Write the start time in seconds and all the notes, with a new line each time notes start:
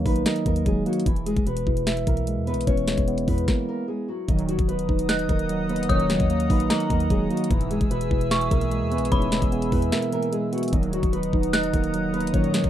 Already playing: D#3 F#3 A#3 D#4 D#5
0.05 A#1 B3 D#4 B4, kick, open hi-hat
0.16 closed hi-hat
0.26 A#3 A#4 D#5, snare, closed hi-hat
0.36 closed hi-hat
0.46 D#2 D#3 A#3 A#4, kick, closed hi-hat
0.56 closed hi-hat
0.66 D#1 F#3 G#3 G#4, kick, closed hi-hat
0.86 F#3 A#3 F#4, closed hi-hat
0.93 closed hi-hat
1.00 closed hi-hat
1.06 E1 E3 E4, kick, closed hi-hat
1.16 closed hi-hat
1.26 G#3 G#4, closed hi-hat
1.36 E1, kick, closed hi-hat
1.47 B2 B3 B4, closed hi-hat
1.57 closed hi-hat
1.67 E1 E4, kick
1.77 closed hi-hat
1.87 E5, snare, closed hi-hat
1.97 closed hi-hat
2.07 B1 E3 A#3 A#4, kick, closed hi-hat
2.17 closed hi-hat
2.27 G#3, closed hi-hat
2.37 E2
2.47 B3 B4, closed hi-hat
2.52 B1, closed hi-hat
2.61 closed hi-hat
2.67 E1 E3 C#4 C#5, kick, closed hi-hat
2.77 closed hi-hat
2.87 G#3, snare, closed hi-hat
2.98 E1, kick, closed hi-hat
3.08 B3, closed hi-hat
3.18 closed hi-hat
3.28 E2 B3 E4 B4, kick, open hi-hat
3.38 closed hi-hat
3.48 A#3 A#4, kick, snare
3.69 A#3 A#4
3.88 G#3 G#4
4.08 F#3 F#4
4.28 D#1 A#2 D#3 F#3 D#4 D#5 F#5 A#5 D#6, kick, closed hi-hat
4.39 closed hi-hat
4.48 F#3 F#4, closed hi-hat
4.59 D#1, kick, closed hi-hat
4.68 B3 B4, closed hi-hat
4.79 closed hi-hat
4.89 D#1 D#4, kick
4.99 closed hi-hat
5.09 D#5 F#6, snare, closed hi-hat
5.19 closed hi-hat
5.29 D#1 D#3 A#3 A#4, kick, closed hi-hat
5.39 closed hi-hat
5.49 F#3, closed hi-hat
5.69 A#3 B3 B4, closed hi-hat
5.76 closed hi-hat
5.83 closed hi-hat
5.89 D#1 A#2 D#3 F#3 C#4 C#5 D#6, kick, closed hi-hat
6.00 closed hi-hat
6.10 F#3, snare, closed hi-hat
6.20 D#2, kick, closed hi-hat
6.30 A#3, closed hi-hat
6.40 closed hi-hat
6.50 A#1 B3 D#4 B4, kick, open hi-hat
6.60 closed hi-hat
6.70 A#3 A#4 D#5 A#5, snare, closed hi-hat
6.80 closed hi-hat
6.90 D#2 D#3 A#3 A#4, kick, closed hi-hat
7.00 closed hi-hat
7.10 D#1 F#3 G#3 G#4, kick, closed hi-hat
7.30 F#3 A#3 F#4, closed hi-hat
7.37 closed hi-hat
7.44 closed hi-hat
7.50 E1 G#2 B2 E3 E4 G#4 E5 G#5 E6, kick, closed hi-hat
7.61 closed hi-hat
7.71 G#3 G#4, closed hi-hat
7.81 E1, kick, closed hi-hat
7.91 B2 B3 B4, closed hi-hat
8.01 closed hi-hat
8.11 E1 E4, kick
8.21 closed hi-hat
8.31 E5 C#6, snare, closed hi-hat
8.41 closed hi-hat
8.51 B1 E3 A#3 A#4, kick, closed hi-hat
8.61 closed hi-hat
8.71 G#3, closed hi-hat
8.82 E2
8.92 B3 B4, closed hi-hat
8.97 B1, closed hi-hat
9.05 closed hi-hat
9.12 E1 G#2 B2 E3 C#4 C#5 B5, kick, closed hi-hat
9.22 closed hi-hat
9.32 G#3, snare, closed hi-hat
9.42 E1, kick, closed hi-hat
9.52 B3, closed hi-hat
9.62 closed hi-hat
9.72 E2 B3 E4 B4, kick, open hi-hat
9.82 closed hi-hat
9.92 A#3 A#4 E5, snare, closed hi-hat
10.02 closed hi-hat
10.12 E3 A#3 A#4, closed hi-hat
10.23 closed hi-hat
10.32 G#3 G#4, closed hi-hat
10.53 F#3 B3 F#4, closed hi-hat
10.58 closed hi-hat
10.63 closed hi-hat
10.68 closed hi-hat
10.73 D#1 A#2 D#3 F#3 D#4 D#5 F#5 A#5 D#6, kick, closed hi-hat
10.83 closed hi-hat
10.93 F#3 F#4, closed hi-hat
11.03 D#1, kick, closed hi-hat
11.13 B3 B4, closed hi-hat
11.23 closed hi-hat
11.33 D#1 D#4, kick
11.43 closed hi-hat
11.53 D#5 F#6, snare, closed hi-hat
11.63 closed hi-hat
11.73 D#1 D#3 A#3 A#4, kick, closed hi-hat
11.84 closed hi-hat
11.94 F#3, closed hi-hat
12.14 A#3 B3 B4, closed hi-hat
12.21 closed hi-hat
12.27 closed hi-hat
12.34 A#2 D#3 F#3 C#4 C#5, kick, closed hi-hat
12.44 closed hi-hat
12.54 F#3, snare, closed hi-hat
12.64 kick, closed hi-hat